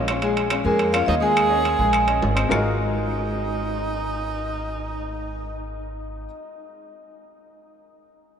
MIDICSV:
0, 0, Header, 1, 6, 480
1, 0, Start_track
1, 0, Tempo, 285987
1, 374, Time_signature, 4, 2, 24, 8
1, 14097, End_track
2, 0, Start_track
2, 0, Title_t, "Vibraphone"
2, 0, Program_c, 0, 11
2, 1093, Note_on_c, 0, 70, 81
2, 1556, Note_on_c, 0, 77, 95
2, 1587, Note_off_c, 0, 70, 0
2, 1786, Note_off_c, 0, 77, 0
2, 1786, Note_on_c, 0, 75, 91
2, 1900, Note_off_c, 0, 75, 0
2, 2055, Note_on_c, 0, 80, 96
2, 3665, Note_off_c, 0, 80, 0
2, 4213, Note_on_c, 0, 75, 75
2, 10503, Note_off_c, 0, 75, 0
2, 14097, End_track
3, 0, Start_track
3, 0, Title_t, "Grand piano"
3, 0, Program_c, 1, 0
3, 151, Note_on_c, 1, 61, 71
3, 162, Note_on_c, 1, 77, 69
3, 164, Note_on_c, 1, 73, 76
3, 341, Note_off_c, 1, 61, 0
3, 347, Note_off_c, 1, 77, 0
3, 349, Note_off_c, 1, 73, 0
3, 390, Note_on_c, 1, 56, 75
3, 392, Note_on_c, 1, 68, 77
3, 398, Note_on_c, 1, 80, 77
3, 777, Note_off_c, 1, 56, 0
3, 778, Note_off_c, 1, 68, 0
3, 781, Note_off_c, 1, 80, 0
3, 866, Note_on_c, 1, 61, 67
3, 873, Note_on_c, 1, 73, 67
3, 875, Note_on_c, 1, 77, 67
3, 1058, Note_off_c, 1, 61, 0
3, 1062, Note_off_c, 1, 73, 0
3, 1063, Note_off_c, 1, 77, 0
3, 1102, Note_on_c, 1, 56, 82
3, 1105, Note_on_c, 1, 68, 82
3, 1110, Note_on_c, 1, 80, 78
3, 1492, Note_off_c, 1, 56, 0
3, 1493, Note_off_c, 1, 68, 0
3, 1497, Note_off_c, 1, 80, 0
3, 1572, Note_on_c, 1, 61, 64
3, 1579, Note_on_c, 1, 73, 65
3, 1579, Note_on_c, 1, 77, 65
3, 1769, Note_off_c, 1, 61, 0
3, 1773, Note_off_c, 1, 73, 0
3, 1773, Note_off_c, 1, 77, 0
3, 1810, Note_on_c, 1, 61, 65
3, 1812, Note_on_c, 1, 77, 64
3, 1813, Note_on_c, 1, 73, 68
3, 2008, Note_off_c, 1, 61, 0
3, 2009, Note_off_c, 1, 73, 0
3, 2009, Note_off_c, 1, 77, 0
3, 2039, Note_on_c, 1, 56, 82
3, 2042, Note_on_c, 1, 68, 80
3, 2047, Note_on_c, 1, 80, 77
3, 2438, Note_off_c, 1, 56, 0
3, 2439, Note_off_c, 1, 68, 0
3, 2443, Note_off_c, 1, 80, 0
3, 2517, Note_on_c, 1, 61, 64
3, 2523, Note_on_c, 1, 75, 69
3, 2527, Note_on_c, 1, 73, 66
3, 2916, Note_off_c, 1, 61, 0
3, 2920, Note_off_c, 1, 75, 0
3, 2922, Note_off_c, 1, 73, 0
3, 3012, Note_on_c, 1, 56, 81
3, 3013, Note_on_c, 1, 68, 78
3, 3015, Note_on_c, 1, 80, 72
3, 3405, Note_off_c, 1, 56, 0
3, 3405, Note_off_c, 1, 68, 0
3, 3407, Note_off_c, 1, 80, 0
3, 3479, Note_on_c, 1, 61, 62
3, 3483, Note_on_c, 1, 73, 66
3, 3488, Note_on_c, 1, 75, 63
3, 3877, Note_off_c, 1, 61, 0
3, 3879, Note_off_c, 1, 73, 0
3, 3882, Note_off_c, 1, 75, 0
3, 3945, Note_on_c, 1, 60, 71
3, 3953, Note_on_c, 1, 72, 70
3, 3963, Note_on_c, 1, 75, 68
3, 4152, Note_off_c, 1, 60, 0
3, 4157, Note_off_c, 1, 72, 0
3, 4163, Note_off_c, 1, 75, 0
3, 4174, Note_on_c, 1, 56, 79
3, 4183, Note_on_c, 1, 63, 73
3, 4190, Note_on_c, 1, 65, 75
3, 4190, Note_on_c, 1, 66, 72
3, 4190, Note_on_c, 1, 68, 71
3, 4201, Note_on_c, 1, 70, 91
3, 10483, Note_off_c, 1, 56, 0
3, 10488, Note_off_c, 1, 63, 0
3, 10491, Note_off_c, 1, 65, 0
3, 10491, Note_off_c, 1, 66, 0
3, 10491, Note_off_c, 1, 68, 0
3, 10497, Note_off_c, 1, 70, 0
3, 14097, End_track
4, 0, Start_track
4, 0, Title_t, "Tenor saxophone"
4, 0, Program_c, 2, 66
4, 1090, Note_on_c, 2, 58, 66
4, 1538, Note_off_c, 2, 58, 0
4, 1578, Note_on_c, 2, 65, 78
4, 1798, Note_off_c, 2, 65, 0
4, 1819, Note_on_c, 2, 63, 80
4, 1925, Note_off_c, 2, 63, 0
4, 2034, Note_on_c, 2, 68, 87
4, 3654, Note_off_c, 2, 68, 0
4, 4213, Note_on_c, 2, 63, 70
4, 9328, Note_off_c, 2, 63, 0
4, 14097, End_track
5, 0, Start_track
5, 0, Title_t, "Upright bass"
5, 0, Program_c, 3, 32
5, 0, Note_on_c, 3, 34, 87
5, 998, Note_off_c, 3, 34, 0
5, 1084, Note_on_c, 3, 41, 91
5, 1757, Note_off_c, 3, 41, 0
5, 1806, Note_on_c, 3, 39, 86
5, 2917, Note_off_c, 3, 39, 0
5, 3002, Note_on_c, 3, 34, 87
5, 3676, Note_off_c, 3, 34, 0
5, 3734, Note_on_c, 3, 32, 82
5, 4156, Note_off_c, 3, 32, 0
5, 4207, Note_on_c, 3, 32, 81
5, 10500, Note_off_c, 3, 32, 0
5, 14097, End_track
6, 0, Start_track
6, 0, Title_t, "Drums"
6, 134, Note_on_c, 9, 65, 90
6, 135, Note_on_c, 9, 75, 59
6, 302, Note_off_c, 9, 65, 0
6, 303, Note_off_c, 9, 75, 0
6, 370, Note_on_c, 9, 65, 65
6, 538, Note_off_c, 9, 65, 0
6, 620, Note_on_c, 9, 65, 67
6, 788, Note_off_c, 9, 65, 0
6, 845, Note_on_c, 9, 65, 83
6, 845, Note_on_c, 9, 66, 54
6, 854, Note_on_c, 9, 75, 60
6, 1013, Note_off_c, 9, 65, 0
6, 1013, Note_off_c, 9, 66, 0
6, 1022, Note_off_c, 9, 75, 0
6, 1331, Note_on_c, 9, 65, 63
6, 1499, Note_off_c, 9, 65, 0
6, 1575, Note_on_c, 9, 65, 86
6, 1588, Note_on_c, 9, 75, 62
6, 1743, Note_off_c, 9, 65, 0
6, 1755, Note_off_c, 9, 75, 0
6, 1815, Note_on_c, 9, 66, 73
6, 1983, Note_off_c, 9, 66, 0
6, 2296, Note_on_c, 9, 65, 84
6, 2298, Note_on_c, 9, 75, 64
6, 2463, Note_off_c, 9, 65, 0
6, 2466, Note_off_c, 9, 75, 0
6, 2774, Note_on_c, 9, 65, 62
6, 2774, Note_on_c, 9, 66, 53
6, 2942, Note_off_c, 9, 65, 0
6, 2942, Note_off_c, 9, 66, 0
6, 3239, Note_on_c, 9, 65, 82
6, 3263, Note_on_c, 9, 75, 62
6, 3407, Note_off_c, 9, 65, 0
6, 3431, Note_off_c, 9, 75, 0
6, 3486, Note_on_c, 9, 65, 67
6, 3654, Note_off_c, 9, 65, 0
6, 3733, Note_on_c, 9, 66, 71
6, 3901, Note_off_c, 9, 66, 0
6, 3971, Note_on_c, 9, 65, 85
6, 3982, Note_on_c, 9, 75, 60
6, 4139, Note_off_c, 9, 65, 0
6, 4150, Note_off_c, 9, 75, 0
6, 4217, Note_on_c, 9, 66, 85
6, 4226, Note_on_c, 9, 75, 87
6, 4384, Note_off_c, 9, 66, 0
6, 4394, Note_off_c, 9, 75, 0
6, 14097, End_track
0, 0, End_of_file